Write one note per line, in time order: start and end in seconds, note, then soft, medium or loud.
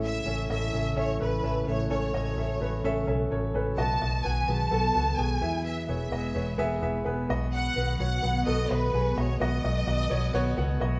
0.00 0.18 A1 medium
0.00 0.46 A2 medium
0.00 3.75 C#3 medium
0.00 3.74 E3 medium
0.00 3.75 A3 medium
0.00 0.17 C#4 medium
0.00 1.66 E4 medium
0.00 0.17 A4 medium
0.00 3.75 A4 medium
0.00 0.17 E5 medium
0.05 0.48 E5 loud
0.26 0.46 A1 medium
0.26 0.45 C#4 medium
0.26 0.45 A4 medium
0.26 0.45 E5 medium
0.49 0.69 A1 medium
0.49 0.68 C#4 medium
0.49 0.68 A4 medium
0.49 0.69 D#5 medium
0.49 0.95 E5 loud
0.73 0.93 A1 medium
0.73 0.92 C#4 medium
0.73 0.92 A4 medium
0.73 0.92 E5 medium
0.96 1.16 A1 medium
0.96 1.15 C#4 medium
0.96 1.15 A4 medium
0.96 1.19 C#5 medium
0.96 1.16 E5 medium
1.19 1.40 A1 medium
1.19 1.38 C#4 medium
1.19 1.39 A4 medium
1.19 1.39 B4 medium
1.19 1.64 B4 medium
1.43 1.63 A1 medium
1.43 1.62 C#4 medium
1.43 1.62 A4 medium
1.43 1.62 E5 medium
1.67 1.87 A1 medium
1.67 2.33 A2 medium
1.67 1.85 C#4 medium
1.67 5.39 F#4 medium
1.67 1.86 A4 medium
1.67 1.90 C#5 medium
1.67 1.86 E5 medium
1.90 2.10 A1 medium
1.90 2.09 C#4 medium
1.90 2.09 A4 medium
1.90 2.09 C#5 medium
1.90 2.13 C#5 medium
2.13 2.33 A1 medium
2.13 2.32 C#4 medium
2.13 2.32 A4 medium
2.13 3.04 C#5 medium
2.13 2.33 D#5 medium
2.37 2.57 A1 medium
2.37 2.56 C#4 medium
2.37 2.56 A4 medium
2.37 2.56 E5 medium
2.61 2.80 A1 medium
2.61 2.79 C#4 medium
2.61 2.79 A4 medium
2.61 2.80 B4 medium
2.84 3.04 A1 medium
2.84 3.03 C#4 loud
2.84 3.03 A4 medium
2.84 3.03 E5 loud
3.07 3.27 B1 medium
3.07 3.26 C#4 medium
3.07 3.26 A4 medium
3.07 3.26 E5 medium
3.31 3.51 A1 medium
3.31 3.50 C#4 medium
3.31 3.50 A4 medium
3.31 3.50 C#5 medium
3.54 3.74 A1 medium
3.54 3.73 C#4 medium
3.54 3.73 A4 medium
3.54 3.73 B4 medium
3.77 3.97 B1 loud
3.77 4.44 B2 medium
3.77 5.40 D#3 medium
3.77 5.40 F#3 medium
3.77 3.96 B3 medium
3.77 11.00 B3 medium
3.77 3.96 F#4 medium
3.77 5.40 B4 medium
3.77 3.97 D#5 medium
3.77 4.22 A5 loud
4.01 4.21 B1 medium
4.01 4.20 B3 medium
4.01 4.20 F#4 medium
4.01 4.20 D#5 medium
4.24 4.44 B1 medium
4.24 4.43 B3 medium
4.24 4.44 F#4 medium
4.24 4.44 F#5 medium
4.24 4.49 G#5 medium
4.48 4.68 B1 medium
4.48 4.67 B3 medium
4.48 4.67 F#4 medium
4.48 4.67 G#4 medium
4.48 5.19 A5 loud
4.71 4.91 B1 medium
4.71 4.90 B3 medium
4.71 4.90 F#4 medium
4.71 4.90 A4 medium
4.95 5.15 C#2 medium
4.95 5.13 B3 medium
4.95 5.14 F#4 medium
4.95 5.14 A4 medium
5.18 5.38 B1 medium
5.18 5.37 B3 medium
5.18 5.37 F#4 medium
5.18 5.37 G#4 medium
5.18 5.65 G#5 loud
5.41 5.90 E2 medium
5.41 6.08 E3 medium
5.41 7.27 E3 medium
5.41 7.28 G#3 medium
5.41 5.79 B3 medium
5.41 5.79 G#4 medium
5.41 7.28 G#4 medium
5.41 9.13 B4 medium
5.41 5.80 E5 medium
5.65 5.87 E5 medium
5.88 6.08 E1 medium
5.88 6.07 B3 medium
5.88 6.07 G#4 medium
5.88 6.08 C#5 medium
5.88 6.79 E5 medium
6.11 6.31 E1 medium
6.11 6.30 B3 medium
6.11 6.31 G#4 medium
6.11 6.31 D#5 medium
6.35 6.55 E1 medium
6.35 6.54 B3 medium
6.35 6.54 G#4 medium
6.35 6.54 C#5 medium
6.58 6.78 E1 medium
6.58 6.77 B3 loud
6.58 6.77 G#4 medium
6.58 6.78 E5 loud
6.82 7.02 E1 medium
6.82 7.01 B3 medium
6.82 7.01 G#4 medium
6.82 7.01 E5 medium
7.05 7.25 E1 medium
7.05 7.24 B3 medium
7.05 7.24 G#4 medium
7.05 7.25 B4 medium
7.29 7.68 B1 medium
7.29 7.96 B2 medium
7.29 11.00 D#3 medium
7.29 11.00 F#3 medium
7.29 7.67 B3 medium
7.29 7.67 F#4 medium
7.29 11.00 F#4 medium
7.29 7.67 D#5 loud
7.53 7.97 F#5 loud
7.76 7.96 B1 medium
7.76 7.95 B3 medium
7.76 7.95 F#4 medium
7.76 7.95 B4 medium
8.00 8.19 B1 medium
8.00 8.18 B3 medium
8.00 8.18 F#4 medium
8.00 8.19 C#5 medium
8.00 8.44 F#5 loud
8.23 8.43 B1 loud
8.23 8.41 B3 medium
8.23 8.42 F#4 medium
8.23 8.42 F#5 medium
8.46 8.66 B1 loud
8.46 8.65 B3 medium
8.46 8.65 F#4 medium
8.46 8.65 A4 loud
8.46 8.71 D#5 medium
8.70 8.90 B1 medium
8.70 8.89 B3 medium
8.70 8.89 F#4 medium
8.70 9.17 B4 medium
8.70 8.89 D#5 medium
8.93 9.13 B1 loud
8.93 9.12 B3 medium
8.93 9.12 F#4 medium
8.93 9.12 G#4 medium
9.17 9.36 B1 medium
9.17 9.84 B2 medium
9.17 9.35 B3 medium
9.17 9.36 F#4 medium
9.17 11.00 A4 medium
9.17 9.41 C#5 medium
9.17 9.36 D#5 medium
9.40 9.60 B1 medium
9.40 9.59 B3 medium
9.40 9.59 F#4 medium
9.40 10.78 D#5 loud
9.40 9.59 D#5 loud
9.63 9.83 B1 loud
9.63 9.82 B3 medium
9.63 9.82 F#4 medium
9.63 9.83 D#5 medium
9.87 10.07 B1 medium
9.87 10.05 B3 medium
9.87 10.06 F#4 medium
9.87 10.06 D#5 medium
10.10 10.30 B1 loud
10.10 10.29 B3 medium
10.10 10.29 F#4 medium
10.10 10.29 C#5 medium
10.34 10.54 B1 loud
10.34 10.53 B3 loud
10.34 10.53 F#4 loud
10.34 10.53 C#5 loud
10.57 10.77 C#2 loud
10.57 10.76 B3 medium
10.57 10.76 F#4 medium
10.57 10.76 F#5 medium
10.80 11.00 B1 medium
10.80 10.99 B3 medium
10.80 11.00 F#4 medium
10.80 11.00 D#5 medium